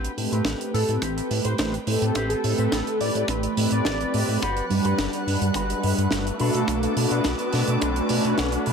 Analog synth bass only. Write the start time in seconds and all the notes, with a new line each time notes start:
0.17 A2
0.32 A2
0.45 A1
0.74 A2
0.88 A2
1.02 A1
1.30 A2
1.45 A2
1.59 A1
1.87 A2
2.02 A2
2.15 A1
2.44 A2
2.58 A2
2.72 A1
3.01 A2
3.15 A2
3.28 A1
3.57 A2
3.71 A2
3.87 A1
4.14 A2
4.28 A2
4.43 G1
4.70 G2
4.85 G2
4.99 G1
5.27 G2
5.41 G2
5.54 G1
5.83 G2
5.98 G2
6.12 G1
6.40 B2
6.54 B2
6.68 B1
6.96 B2
7.11 B2
7.25 B1
7.53 B2
7.68 B2
7.82 B1
8.10 B2
8.25 B2
8.39 B1
8.67 B2